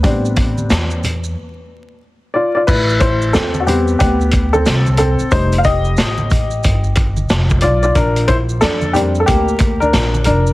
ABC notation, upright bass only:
X:1
M:4/4
L:1/16
Q:"Swing 16ths" 1/4=91
K:Am
V:1 name="Upright bass" clef=bass
A,,,4 E,,4 z8 | A,,,4 E,,4 D,,4 C,,3 z | F,,,4 A,,,4 G,,,4 F,,,2 B,,,2 | _B,,,4 F,,4 D,,4 B,,,2 F,,,2 |]